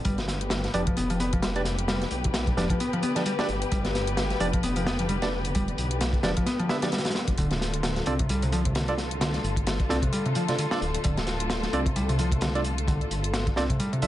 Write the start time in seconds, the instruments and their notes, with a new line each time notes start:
0.05 detuned saw bass G1, string section D3 B3 G4 B4, picked electric bass G3, kick, closed hi-hat
0.18 snare, closed hi-hat
0.28 snare, closed hi-hat
0.41 closed hi-hat
0.50 snare, closed hi-hat
0.64 snare, closed hi-hat
0.74 detuned saw bass F1, picked electric bass F3, tine electric piano D4 G4 B4 D5, closed hi-hat
0.87 picked electric bass F3, kick, closed hi-hat
0.97 detuned saw bass F1, picked electric bass B3, closed hi-hat
1.10 picked electric bass F3, closed hi-hat
1.20 picked electric bass B3, closed hi-hat
1.33 picked electric bass F3, kick, closed hi-hat
1.42 picked electric bass G3, snare, closed hi-hat
1.56 tine electric piano D4 G4 B4 D5, closed hi-hat
1.65 snare, closed hi-hat
1.79 closed hi-hat
1.88 picked electric bass G3, snare, closed hi-hat
2.02 snare, closed hi-hat
2.11 detuned saw bass B1, closed hi-hat
2.24 kick, closed hi-hat
2.34 snare, closed hi-hat
2.47 kick, closed hi-hat
2.57 detuned saw bass F1, picked electric bass F3, tine electric piano D4 G4 B4 D5, snare, closed hi-hat
2.70 picked electric bass F3, kick, closed hi-hat
2.80 picked electric bass B3, closed hi-hat
2.93 picked electric bass F3, closed hi-hat
3.03 picked electric bass B3, closed hi-hat
3.15 picked electric bass F3, tine electric piano D4 G4 B4 D5, snare, closed hi-hat
3.26 picked electric bass G3, closed hi-hat
3.39 tine electric piano D4 G4 B4 D5, snare, closed hi-hat
3.48 detuned saw bass G1, closed hi-hat
3.62 closed hi-hat
3.72 detuned saw bass G1, picked electric bass G3, kick, closed hi-hat
3.85 snare, closed hi-hat
3.95 snare, closed hi-hat
4.07 closed hi-hat
4.17 snare, closed hi-hat
4.30 snare, closed hi-hat
4.40 detuned saw bass F1, picked electric bass F3, tine electric piano D4 G4 B4 D5, closed hi-hat
4.53 picked electric bass F3, kick, closed hi-hat
4.63 detuned saw bass F1, picked electric bass B3, closed hi-hat
4.76 picked electric bass F3, closed hi-hat
4.86 picked electric bass B3, snare, closed hi-hat
4.99 picked electric bass F3, closed hi-hat
5.09 picked electric bass G3, closed hi-hat
5.22 tine electric piano D4 G4 B4 D5, snare, closed hi-hat
5.45 closed hi-hat
5.55 picked electric bass G3, kick, closed hi-hat
5.68 closed hi-hat
5.78 detuned saw bass B1, closed hi-hat
5.91 closed hi-hat
6.01 snare, closed hi-hat
6.13 kick, closed hi-hat
6.23 detuned saw bass F1, picked electric bass F3, tine electric piano D4 G4 B4 D5, snare, closed hi-hat
6.37 picked electric bass F3, kick, closed hi-hat
6.46 picked electric bass B3, snare, closed hi-hat
6.59 picked electric bass F3, closed hi-hat
6.69 picked electric bass B3, tine electric piano D4 G4 B4 E5, snare, closed hi-hat
6.82 picked electric bass F3, tine electric piano D4 G4 B4 D5, snare, closed hi-hat
6.92 picked electric bass G3, snare, closed hi-hat
6.98 snare, closed hi-hat
7.05 snare, closed hi-hat
7.10 snare, closed hi-hat
7.15 snare, closed hi-hat
7.28 detuned saw bass F1, kick, closed hi-hat
7.38 detuned saw bass D1, picked electric bass D3, string section A3 F4 A4, kick, closed hi-hat
7.51 snare, closed hi-hat
7.61 snare, closed hi-hat
7.74 closed hi-hat
7.83 snare, closed hi-hat
7.96 snare, closed hi-hat
8.06 detuned saw bass C2, picked electric bass C4, tine electric piano D4 F4 A4 D5, closed hi-hat
8.19 picked electric bass C3, kick, closed hi-hat
8.29 detuned saw bass C2, picked electric bass G3, closed hi-hat
8.42 picked electric bass C3, closed hi-hat
8.52 picked electric bass F3, closed hi-hat
8.65 picked electric bass C3, kick, closed hi-hat
8.75 picked electric bass D3, snare, closed hi-hat
8.88 tine electric piano D4 F4 A4 D5, closed hi-hat
8.98 snare, closed hi-hat
9.11 closed hi-hat
9.21 picked electric bass D3, snare, closed hi-hat
9.34 snare, closed hi-hat
9.44 detuned saw bass G1, closed hi-hat
9.56 kick, closed hi-hat
9.67 snare, closed hi-hat
9.80 kick, closed hi-hat
9.89 detuned saw bass C2, picked electric bass C4, tine electric piano D4 F4 A4 D5, snare, closed hi-hat
10.02 picked electric bass C3, kick, closed hi-hat
10.13 picked electric bass G3, closed hi-hat
10.26 picked electric bass C3, closed hi-hat
10.35 picked electric bass F3, closed hi-hat
10.48 picked electric bass C3, tine electric piano D4 F4 A4 D5, snare, closed hi-hat
10.58 picked electric bass D3, closed hi-hat
10.71 tine electric piano D4 F4 A4 D5, snare, closed hi-hat
10.81 detuned saw bass D1, closed hi-hat
10.94 closed hi-hat
11.04 detuned saw bass D1, picked electric bass D3, kick, closed hi-hat
11.17 snare, closed hi-hat
11.27 snare, closed hi-hat
11.40 closed hi-hat
11.50 snare, closed hi-hat
11.63 snare, closed hi-hat
11.73 detuned saw bass C2, picked electric bass C4, tine electric piano D4 F4 A4 D5, closed hi-hat
11.86 picked electric bass C3, kick, closed hi-hat
11.96 detuned saw bass C2, picked electric bass G3, closed hi-hat
12.09 picked electric bass C3, closed hi-hat
12.19 picked electric bass F3, closed hi-hat
12.32 picked electric bass C3, kick, closed hi-hat
12.41 picked electric bass D3, snare, closed hi-hat
12.55 tine electric piano D4 F4 A4 D5, closed hi-hat
12.64 closed hi-hat
12.78 closed hi-hat
12.88 picked electric bass D3, kick, closed hi-hat
13.01 closed hi-hat
13.11 detuned saw bass G1, closed hi-hat
13.24 closed hi-hat
13.34 snare, closed hi-hat
13.47 kick, closed hi-hat
13.56 detuned saw bass C2, picked electric bass C4, tine electric piano D4 F4 A4 D5, snare, closed hi-hat
13.70 picked electric bass C3, kick, closed hi-hat
13.80 picked electric bass G3, closed hi-hat
13.93 picked electric bass C3, closed hi-hat
14.02 detuned saw bass A1, picked electric bass F3, tine electric piano D4 F4 A4 E5, closed hi-hat